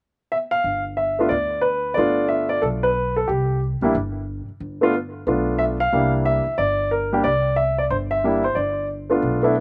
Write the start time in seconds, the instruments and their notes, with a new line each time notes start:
0.32 grand piano E5
0.51 grand piano F5
0.64 upright bass G1
0.97 grand piano E5
1.19 grand piano A3 B3 D4 F4
1.29 upright bass D2, grand piano D5
1.61 grand piano B4
1.94 upright bass G1, grand piano A3 B3 D4 D5
1.99 grand piano F4
2.28 grand piano E5
2.49 grand piano D5
2.62 upright bass B1, grand piano A4
2.83 grand piano B4
3.16 grand piano A4
3.28 upright bass C2, grand piano G4
3.81 upright bass A#1, grand piano G3 A#3 D4 E4
3.95 upright bass G1
4.48 muted upright bass stroke
4.60 upright bass G1
4.81 grand piano A3 B3 D4 F4
5.27 upright bass B1, grand piano A3 B3 D4 F4
5.59 grand piano E5
5.80 grand piano F5
5.93 upright bass C2, grand piano G3 A#3 D4 E4
6.25 grand piano E5
6.46 muted upright bass stroke
6.58 upright bass G1, grand piano D5
6.91 grand piano A#4
7.13 grand piano G3 A#3 D4 G4
7.24 upright bass C2, grand piano D5
7.56 grand piano E5
7.78 grand piano D5
7.90 upright bass G1, grand piano C5
8.11 grand piano E5
8.24 grand piano G3 A#3 D4 E4
8.44 grand piano C5
8.55 upright bass G1, grand piano D5
9.10 grand piano A3 B3 D4 F4
9.22 upright bass B1
9.43 grand piano A3 B3 D4 E4